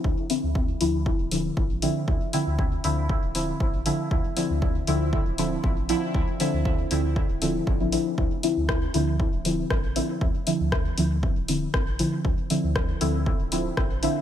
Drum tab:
HH |-o-o-o-o|-o-o-o-o|-o-o-o-o|-o-o-o-o|
SD |--------|--------|--------|--------|
BD |o-o-o-o-|o-o-o-o-|o-o-o-o-|o-o-o-o-|

HH |-o-o-o-o|-o-o-o-o|-o-o-o-o|
SD |--r---r-|--r---r-|--r---r-|
BD |o-o-o-o-|o-o-o-o-|o-o-o-o-|